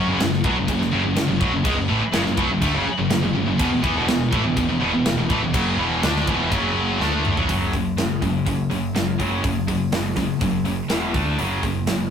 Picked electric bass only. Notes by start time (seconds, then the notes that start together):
0.08 F#1
0.20 F#1
0.44 B1
0.56 F#1
0.68 F#1
0.81 F#1
0.93 F#1
1.05 F#1
1.17 F#1
1.28 F#1
1.41 B1
1.52 F#1
1.65 C#2
1.76 F#1
1.88 A1
2.01 muted picked electric bass stroke
2.13 F#1
2.26 F#1
2.37 B1
2.49 F#1
2.62 D2
2.74 F#1
2.86 muted picked electric bass stroke
2.99 F#1
3.10 F#1
3.23 F#1
3.35 F#1
3.46 F#1
3.59 E1
3.71 E1
3.84 E2
3.95 E1
4.07 E1
4.32 A1
4.44 E1
4.57 E1
4.68 E1
4.81 E1
4.93 E1
5.05 E1
5.17 E1
5.30 A1
5.41 E1
5.54 F#1
5.78 E1
6.02 D2
6.27 E1
6.51 F#1
7.00 D2
7.37 B1
7.49 F#1
7.74 F#1
7.97 F#1
8.22 F#1
8.46 F#1
8.71 F#1
8.95 F#1
9.20 F#1
9.44 F#1
9.92 F#1
10.41 F#1
10.90 E1
11.14 D2
11.39 F#1
11.63 F#1
11.88 F#1